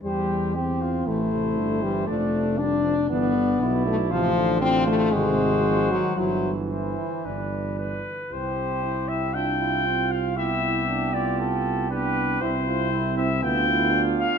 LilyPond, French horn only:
\new Staff \with { instrumentName = "French horn" } { \time 4/4 \key c \major \tempo 4 = 118 g4 c'4 a4. g8 | a4 d'4 b4. a8 | f4 c'8 a8 aes4. ges8 | fis8 r8 e2~ e8 r8 |
e'2 d'4 c'4 | b2. b4 | c'2 b2 | }